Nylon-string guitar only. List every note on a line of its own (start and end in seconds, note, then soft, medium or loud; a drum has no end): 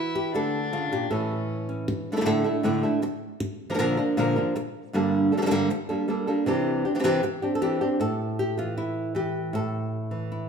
0.00 0.34 E3 medium
0.00 0.34 E4 medium
0.15 0.34 G4 medium
0.34 0.91 D3 medium
0.34 0.73 A3 medium
0.34 0.92 A4 loud
0.73 0.92 C#3 medium
0.73 1.11 F4 medium
0.92 1.10 A#2 medium
0.92 1.11 G4 medium
1.10 1.85 A2 medium
1.10 2.12 E3 medium
1.10 1.68 C#4 soft
1.10 1.86 E4 medium
1.10 1.87 A4 medium
1.69 1.85 C#4 medium
1.88 muted nylon-string guitar stroke medium
2.12 2.15 D3 soft
2.12 2.16 A3 medium
2.12 2.16 D4 medium
2.12 2.16 E4 medium
2.12 2.16 A4 medium
2.16 2.20 D3 medium
2.16 2.20 A3 medium
2.16 2.20 D4 medium
2.16 2.21 E4 medium
2.16 2.21 A4 medium
2.21 2.25 D3 medium
2.21 2.25 A3 medium
2.21 2.25 D4 medium
2.21 2.25 E4 medium
2.21 2.25 A4 medium
2.25 2.44 A2 medium
2.25 2.44 D3 medium
2.25 2.44 A3 medium
2.25 2.44 D4 medium
2.25 2.44 E4 medium
2.25 2.43 A4 loud
2.44 2.63 A3 soft
2.44 2.64 D4 soft
2.44 2.64 E4 medium
2.44 2.63 A4 medium
2.63 2.82 A2 medium
2.63 2.82 D3 medium
2.63 2.83 A3 medium
2.63 2.83 D4 medium
2.63 2.83 E4 medium
2.63 2.82 A4 medium
2.83 3.02 A3 soft
2.83 3.02 D4 soft
2.83 3.02 E4 medium
2.83 3.01 A4 medium
3.02 muted nylon-string guitar stroke medium
3.40 muted nylon-string guitar stroke medium
3.70 3.73 D3 medium
3.70 3.73 F3 medium
3.70 3.74 A#3 medium
3.70 3.74 D4 medium
3.70 3.74 A#4 medium
3.74 3.78 D3 medium
3.74 3.78 F3 medium
3.74 3.78 A#3 medium
3.74 3.78 D4 medium
3.74 3.79 A#4 medium
3.79 3.97 A#2 medium
3.79 3.97 D3 medium
3.79 3.97 F3 medium
3.79 3.97 A#3 medium
3.79 3.97 D4 medium
3.79 3.96 A#4 medium
3.97 4.17 F3 soft
3.97 4.17 A#3 medium
3.97 4.17 D4 medium
3.97 4.16 A#4 medium
4.17 4.36 A#2 medium
4.17 4.36 D3 medium
4.17 4.36 F3 medium
4.17 4.36 A#3 medium
4.17 4.36 D4 medium
4.17 4.35 A#4 loud
4.36 4.55 F3 soft
4.36 4.55 A#3 soft
4.36 4.55 D4 medium
4.36 4.55 A#4 medium
4.56 muted nylon-string guitar stroke medium
4.93 5.31 G2 medium
4.93 5.31 D3 medium
4.93 5.32 G3 medium
4.93 5.32 A#3 medium
4.93 5.32 D4 medium
4.93 5.31 A4 medium
5.32 5.37 G3 soft
5.32 5.37 A#3 medium
5.32 5.37 D4 medium
5.32 5.37 A4 medium
5.37 5.41 D3 medium
5.37 5.41 G3 medium
5.37 5.41 A#3 medium
5.37 5.42 D4 medium
5.37 5.42 A4 medium
5.42 5.45 D3 medium
5.42 5.46 G3 medium
5.42 5.46 A#3 medium
5.42 5.46 D4 medium
5.42 5.46 A4 medium
5.46 5.50 D3 medium
5.46 5.50 G3 medium
5.46 5.50 A#3 medium
5.46 5.51 D4 medium
5.46 5.51 A4 medium
5.51 5.69 G2 medium
5.51 5.69 D3 medium
5.51 5.70 G3 loud
5.51 5.70 A#3 loud
5.51 5.70 D4 loud
5.51 5.70 A4 medium
5.70 muted nylon-string guitar stroke medium
5.89 6.07 G3 medium
5.89 6.07 A#3 medium
5.89 6.08 D4 medium
5.89 6.08 A4 medium
6.08 6.27 G3 medium
6.08 6.27 A#3 medium
6.08 6.27 D4 medium
6.08 6.26 A4 medium
6.27 6.47 G3 soft
6.27 6.47 A#3 medium
6.27 6.46 D4 medium
6.27 6.46 A4 medium
6.46 6.84 C3 medium
6.46 6.84 E3 medium
6.46 6.85 C4 medium
6.46 6.85 D4 medium
6.46 6.84 G4 medium
6.85 6.94 C4 soft
6.85 6.94 D4 medium
6.85 6.95 G4 medium
6.95 6.98 E3 medium
6.95 6.99 C4 medium
6.95 6.99 D4 medium
6.95 6.99 G4 medium
6.99 7.03 E3 medium
6.99 7.03 C4 medium
6.99 7.04 D4 medium
6.99 7.04 G4 medium
7.04 7.22 C3 medium
7.04 7.22 E3 medium
7.04 7.23 C4 loud
7.04 7.23 D4 medium
7.04 7.23 G4 loud
7.23 muted nylon-string guitar stroke medium
7.42 7.61 C4 soft
7.42 7.61 D4 medium
7.42 7.55 G4 medium
7.55 7.81 A4 medium
7.61 7.80 E3 medium
7.61 7.80 C4 medium
7.61 7.81 D4 medium
7.61 7.80 G4 loud
7.81 8.00 C4 soft
7.81 8.00 D4 medium
7.81 7.99 G4 medium
8.00 9.51 A2 medium
8.00 8.77 A4 loud
8.39 8.58 G4 loud
8.57 9.13 E3 medium
8.57 8.77 F4 medium
8.77 9.16 E4 medium
9.15 9.51 E3 medium
9.15 9.92 G4 loud
9.53 10.49 A2 medium
9.53 10.31 A4 medium
10.11 10.49 E3 medium
10.32 10.49 E4 medium